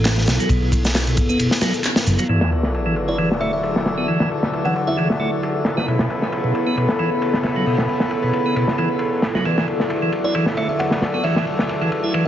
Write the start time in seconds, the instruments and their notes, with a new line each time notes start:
Already playing: fingered electric bass A1, ambient pad C#3 B3 E4 A4
0.05 snare, clap, ride, shaker
0.18 snare
0.28 fingered electric bass B1, snare, ride, shaker
0.40 tonewheel organ F#3, shaker
0.49 fingered electric bass B1, tonewheel organ B2, kick, ride, shaker
0.62 tonewheel organ B2
0.72 kick, ride, shaker
0.85 snare, shaker
0.95 snare, clap, ride, shaker
1.07 tonewheel organ B2, ride
1.17 kick, ride, shaker
1.29 fingered electric bass F#1, tonewheel organ B3, shaker
1.39 tonewheel organ B2, ride, shaker
1.51 snare
1.61 tonewheel organ F#3, snare, ride, shaker
1.74 ride, shaker
1.84 clap, ride, shaker
1.96 snare, ride
2.07 fingered electric bass F#1, ride, shaker
2.19 tonewheel organ F#3, ride, shaker
2.29 ambient pad D3 F#3 E4 A4, tonewheel organ E3, horn section A3 D4 E4 F#4 A4, ride, sub drop
2.41 tonewheel organ E3, snare
2.52 ride
2.63 snare
2.74 ride
2.86 tonewheel organ E3
2.96 ride
3.08 tonewheel organ E4, kalimba D5
3.18 tonewheel organ E3, ride
3.31 snare
3.41 tonewheel organ A3, kalimba E5, ride
3.53 kalimba E5
3.63 ride
3.76 snare
3.85 snare, ride
3.98 tonewheel organ B3
4.08 tonewheel organ E3, open hi-hat
4.20 tonewheel organ E3, snare
4.31 ride
4.43 snare
4.53 ride
4.65 tonewheel organ E3, kalimba F#5, ride
4.76 ride
4.87 tonewheel organ E4, kalimba E5
4.97 tonewheel organ E3, ride
5.10 snare
5.20 tonewheel organ A3, ride
5.43 ride
5.65 snare, ride
5.77 tonewheel organ B3, snare
5.87 tonewheel organ B2, ambient pad C#3 B3, horn section B3 C#4 E4 A4 B4, ride
5.99 tonewheel organ B2, snare
6.10 ride
6.22 snare
6.32 ride
6.44 tonewheel organ B2
6.55 ride
6.67 tonewheel organ B3
6.77 tonewheel organ B2, ride
6.89 snare
6.99 tonewheel organ E3, ride
7.22 ride
7.34 snare
7.43 snare, ride
7.56 tonewheel organ F#3
7.66 tonewheel organ B2, open hi-hat
7.78 tonewheel organ B2, snare
7.89 ride
8.00 snare
8.11 ride
8.23 tonewheel organ B2, ride
8.33 ride
8.46 tonewheel organ B3
8.56 tonewheel organ B2, ride
8.68 snare
8.78 tonewheel organ E3, ride
8.99 ride
9.22 snare, ride
9.35 tonewheel organ F#3, snare
9.45 ambient pad D3 F#3, tonewheel organ E3, horn section A3 D4 E4 F#4 A4, ride
9.58 tonewheel organ E3, snare
9.68 ride
9.80 snare
9.90 ride
10.02 tonewheel organ E3
10.12 ride
10.24 tonewheel organ E4, kalimba D5
10.35 tonewheel organ E3, ride
10.46 snare
10.57 tonewheel organ A3, kalimba E5, ride
10.69 kalimba E5
10.79 kalimba F#5, ride
10.91 snare
11.02 snare, ride
11.14 tonewheel organ B3
11.24 tonewheel organ E3, kalimba E5, open hi-hat
11.36 tonewheel organ E3, snare
11.47 ride
11.59 snare
11.69 ride
11.81 tonewheel organ E3, ride
11.92 ride
12.04 tonewheel organ E4
12.14 tonewheel organ E3, ride